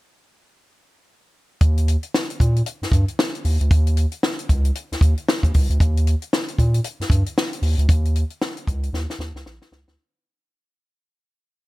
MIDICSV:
0, 0, Header, 1, 3, 480
1, 0, Start_track
1, 0, Tempo, 523104
1, 1481, Time_signature, 4, 2, 24, 8
1, 10715, End_track
2, 0, Start_track
2, 0, Title_t, "Analog synth bass"
2, 0, Program_c, 0, 38
2, 1476, Note_on_c, 0, 39, 119
2, 1803, Note_off_c, 0, 39, 0
2, 2204, Note_on_c, 0, 46, 94
2, 2406, Note_off_c, 0, 46, 0
2, 2586, Note_on_c, 0, 43, 44
2, 2624, Note_off_c, 0, 43, 0
2, 2674, Note_on_c, 0, 43, 95
2, 2799, Note_off_c, 0, 43, 0
2, 3164, Note_on_c, 0, 39, 92
2, 3284, Note_off_c, 0, 39, 0
2, 3308, Note_on_c, 0, 38, 81
2, 3388, Note_off_c, 0, 38, 0
2, 3402, Note_on_c, 0, 39, 121
2, 3726, Note_off_c, 0, 39, 0
2, 4124, Note_on_c, 0, 37, 96
2, 4325, Note_off_c, 0, 37, 0
2, 4512, Note_on_c, 0, 39, 41
2, 4548, Note_off_c, 0, 39, 0
2, 4598, Note_on_c, 0, 39, 90
2, 4720, Note_off_c, 0, 39, 0
2, 4982, Note_on_c, 0, 39, 92
2, 5063, Note_off_c, 0, 39, 0
2, 5088, Note_on_c, 0, 37, 96
2, 5205, Note_off_c, 0, 37, 0
2, 5228, Note_on_c, 0, 38, 79
2, 5306, Note_off_c, 0, 38, 0
2, 5321, Note_on_c, 0, 39, 112
2, 5644, Note_off_c, 0, 39, 0
2, 6042, Note_on_c, 0, 46, 88
2, 6242, Note_off_c, 0, 46, 0
2, 6422, Note_on_c, 0, 43, 43
2, 6459, Note_off_c, 0, 43, 0
2, 6513, Note_on_c, 0, 43, 89
2, 6636, Note_off_c, 0, 43, 0
2, 6993, Note_on_c, 0, 39, 84
2, 7115, Note_off_c, 0, 39, 0
2, 7138, Note_on_c, 0, 38, 100
2, 7219, Note_off_c, 0, 38, 0
2, 7235, Note_on_c, 0, 39, 115
2, 7560, Note_off_c, 0, 39, 0
2, 7961, Note_on_c, 0, 37, 105
2, 8161, Note_off_c, 0, 37, 0
2, 8195, Note_on_c, 0, 39, 85
2, 8316, Note_off_c, 0, 39, 0
2, 8430, Note_on_c, 0, 39, 89
2, 8554, Note_off_c, 0, 39, 0
2, 8575, Note_on_c, 0, 37, 102
2, 8658, Note_off_c, 0, 37, 0
2, 8683, Note_on_c, 0, 34, 77
2, 8801, Note_off_c, 0, 34, 0
2, 8916, Note_on_c, 0, 37, 79
2, 9037, Note_off_c, 0, 37, 0
2, 9065, Note_on_c, 0, 38, 76
2, 9144, Note_off_c, 0, 38, 0
2, 10715, End_track
3, 0, Start_track
3, 0, Title_t, "Drums"
3, 1476, Note_on_c, 9, 42, 85
3, 1478, Note_on_c, 9, 36, 108
3, 1567, Note_off_c, 9, 42, 0
3, 1570, Note_off_c, 9, 36, 0
3, 1629, Note_on_c, 9, 42, 52
3, 1721, Note_off_c, 9, 42, 0
3, 1725, Note_on_c, 9, 42, 71
3, 1817, Note_off_c, 9, 42, 0
3, 1861, Note_on_c, 9, 42, 46
3, 1953, Note_off_c, 9, 42, 0
3, 1968, Note_on_c, 9, 38, 102
3, 2060, Note_off_c, 9, 38, 0
3, 2110, Note_on_c, 9, 42, 55
3, 2202, Note_off_c, 9, 42, 0
3, 2203, Note_on_c, 9, 36, 83
3, 2210, Note_on_c, 9, 42, 66
3, 2295, Note_off_c, 9, 36, 0
3, 2302, Note_off_c, 9, 42, 0
3, 2353, Note_on_c, 9, 42, 49
3, 2441, Note_off_c, 9, 42, 0
3, 2441, Note_on_c, 9, 42, 86
3, 2533, Note_off_c, 9, 42, 0
3, 2596, Note_on_c, 9, 38, 35
3, 2597, Note_on_c, 9, 42, 41
3, 2676, Note_on_c, 9, 36, 87
3, 2688, Note_off_c, 9, 38, 0
3, 2688, Note_off_c, 9, 42, 0
3, 2688, Note_on_c, 9, 42, 72
3, 2767, Note_off_c, 9, 36, 0
3, 2780, Note_off_c, 9, 42, 0
3, 2828, Note_on_c, 9, 42, 44
3, 2920, Note_off_c, 9, 42, 0
3, 2927, Note_on_c, 9, 38, 112
3, 3019, Note_off_c, 9, 38, 0
3, 3072, Note_on_c, 9, 42, 55
3, 3163, Note_on_c, 9, 46, 65
3, 3164, Note_off_c, 9, 42, 0
3, 3255, Note_off_c, 9, 46, 0
3, 3311, Note_on_c, 9, 42, 62
3, 3403, Note_off_c, 9, 42, 0
3, 3403, Note_on_c, 9, 36, 121
3, 3403, Note_on_c, 9, 42, 88
3, 3495, Note_off_c, 9, 36, 0
3, 3495, Note_off_c, 9, 42, 0
3, 3548, Note_on_c, 9, 42, 53
3, 3640, Note_off_c, 9, 42, 0
3, 3641, Note_on_c, 9, 42, 83
3, 3733, Note_off_c, 9, 42, 0
3, 3777, Note_on_c, 9, 42, 52
3, 3869, Note_off_c, 9, 42, 0
3, 3883, Note_on_c, 9, 38, 103
3, 3975, Note_off_c, 9, 38, 0
3, 4026, Note_on_c, 9, 42, 53
3, 4118, Note_off_c, 9, 42, 0
3, 4123, Note_on_c, 9, 36, 79
3, 4124, Note_on_c, 9, 42, 65
3, 4215, Note_off_c, 9, 36, 0
3, 4216, Note_off_c, 9, 42, 0
3, 4264, Note_on_c, 9, 42, 51
3, 4356, Note_off_c, 9, 42, 0
3, 4362, Note_on_c, 9, 42, 84
3, 4453, Note_off_c, 9, 42, 0
3, 4518, Note_on_c, 9, 38, 35
3, 4519, Note_on_c, 9, 42, 43
3, 4598, Note_on_c, 9, 36, 87
3, 4608, Note_off_c, 9, 42, 0
3, 4608, Note_on_c, 9, 42, 69
3, 4610, Note_off_c, 9, 38, 0
3, 4689, Note_off_c, 9, 36, 0
3, 4700, Note_off_c, 9, 42, 0
3, 4749, Note_on_c, 9, 42, 41
3, 4840, Note_off_c, 9, 42, 0
3, 4850, Note_on_c, 9, 38, 112
3, 4941, Note_off_c, 9, 38, 0
3, 4985, Note_on_c, 9, 36, 87
3, 4993, Note_on_c, 9, 42, 54
3, 5077, Note_off_c, 9, 36, 0
3, 5085, Note_off_c, 9, 42, 0
3, 5085, Note_on_c, 9, 46, 64
3, 5091, Note_on_c, 9, 36, 82
3, 5176, Note_off_c, 9, 46, 0
3, 5183, Note_off_c, 9, 36, 0
3, 5234, Note_on_c, 9, 42, 58
3, 5325, Note_on_c, 9, 36, 105
3, 5326, Note_off_c, 9, 42, 0
3, 5329, Note_on_c, 9, 42, 75
3, 5416, Note_off_c, 9, 36, 0
3, 5421, Note_off_c, 9, 42, 0
3, 5480, Note_on_c, 9, 42, 54
3, 5570, Note_off_c, 9, 42, 0
3, 5570, Note_on_c, 9, 42, 76
3, 5662, Note_off_c, 9, 42, 0
3, 5706, Note_on_c, 9, 42, 47
3, 5798, Note_off_c, 9, 42, 0
3, 5809, Note_on_c, 9, 38, 101
3, 5901, Note_off_c, 9, 38, 0
3, 5949, Note_on_c, 9, 42, 55
3, 6040, Note_off_c, 9, 42, 0
3, 6042, Note_on_c, 9, 36, 72
3, 6048, Note_on_c, 9, 42, 65
3, 6134, Note_off_c, 9, 36, 0
3, 6140, Note_off_c, 9, 42, 0
3, 6186, Note_on_c, 9, 42, 55
3, 6277, Note_off_c, 9, 42, 0
3, 6278, Note_on_c, 9, 42, 97
3, 6370, Note_off_c, 9, 42, 0
3, 6435, Note_on_c, 9, 38, 32
3, 6435, Note_on_c, 9, 42, 47
3, 6513, Note_on_c, 9, 36, 87
3, 6526, Note_off_c, 9, 38, 0
3, 6526, Note_off_c, 9, 42, 0
3, 6526, Note_on_c, 9, 42, 78
3, 6605, Note_off_c, 9, 36, 0
3, 6618, Note_off_c, 9, 42, 0
3, 6665, Note_on_c, 9, 42, 47
3, 6756, Note_off_c, 9, 42, 0
3, 6769, Note_on_c, 9, 38, 113
3, 6861, Note_off_c, 9, 38, 0
3, 6908, Note_on_c, 9, 42, 55
3, 6997, Note_on_c, 9, 46, 73
3, 7000, Note_off_c, 9, 42, 0
3, 7089, Note_off_c, 9, 46, 0
3, 7148, Note_on_c, 9, 42, 56
3, 7239, Note_on_c, 9, 36, 112
3, 7240, Note_off_c, 9, 42, 0
3, 7243, Note_on_c, 9, 42, 76
3, 7331, Note_off_c, 9, 36, 0
3, 7335, Note_off_c, 9, 42, 0
3, 7390, Note_on_c, 9, 42, 46
3, 7482, Note_off_c, 9, 42, 0
3, 7483, Note_on_c, 9, 42, 78
3, 7575, Note_off_c, 9, 42, 0
3, 7618, Note_on_c, 9, 42, 42
3, 7710, Note_off_c, 9, 42, 0
3, 7722, Note_on_c, 9, 38, 109
3, 7814, Note_off_c, 9, 38, 0
3, 7862, Note_on_c, 9, 42, 55
3, 7954, Note_off_c, 9, 42, 0
3, 7960, Note_on_c, 9, 36, 84
3, 7966, Note_on_c, 9, 42, 61
3, 8051, Note_off_c, 9, 36, 0
3, 8058, Note_off_c, 9, 42, 0
3, 8105, Note_on_c, 9, 42, 51
3, 8197, Note_off_c, 9, 42, 0
3, 8205, Note_on_c, 9, 38, 55
3, 8297, Note_off_c, 9, 38, 0
3, 8350, Note_on_c, 9, 38, 54
3, 8442, Note_off_c, 9, 38, 0
3, 8444, Note_on_c, 9, 38, 69
3, 8536, Note_off_c, 9, 38, 0
3, 8588, Note_on_c, 9, 38, 60
3, 8680, Note_off_c, 9, 38, 0
3, 8683, Note_on_c, 9, 38, 82
3, 8774, Note_off_c, 9, 38, 0
3, 8825, Note_on_c, 9, 38, 75
3, 8917, Note_off_c, 9, 38, 0
3, 8923, Note_on_c, 9, 38, 90
3, 9014, Note_off_c, 9, 38, 0
3, 9065, Note_on_c, 9, 38, 86
3, 9157, Note_off_c, 9, 38, 0
3, 10715, End_track
0, 0, End_of_file